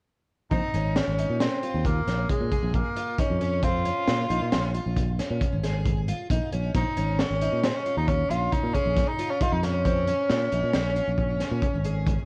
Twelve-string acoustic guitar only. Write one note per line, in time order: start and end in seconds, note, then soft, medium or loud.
0.52 0.70 C4 medium
0.75 1.11 C#4 medium
1.19 1.37 D#4 medium
1.41 1.59 C#4 medium
1.63 2.00 F4 medium
2.08 2.44 C#4 medium
2.52 2.88 G#4 medium
2.96 3.15 F4 medium
3.19 3.37 D#4 medium
3.41 3.59 C#4 medium
3.63 3.81 C4 medium
3.85 4.22 C#4 medium
4.30 4.48 D#4 medium
4.52 4.70 C#4 medium
4.74 5.11 F4 medium
5.19 5.55 C#4 medium
5.63 6.00 G#4 medium
6.08 6.26 F4 medium
6.30 6.48 D#4 medium
6.52 6.71 C#4 medium
6.74 6.93 C4 medium
6.97 7.33 C#4 medium
7.42 7.60 D#4 medium
7.64 7.82 C#4 medium
7.86 8.22 F4 medium
8.30 8.67 C#4 medium
8.75 9.11 G#4 medium
9.19 9.37 F4 medium
9.41 9.59 D#4 medium
9.64 9.82 C#4 medium
9.86 10.04 C4 medium
10.08 10.44 C#4 medium
10.52 10.70 D#4 medium
10.74 10.92 C#4 medium
10.96 11.33 F4 medium
11.41 11.77 C#4 medium
11.85 12.21 G#4 medium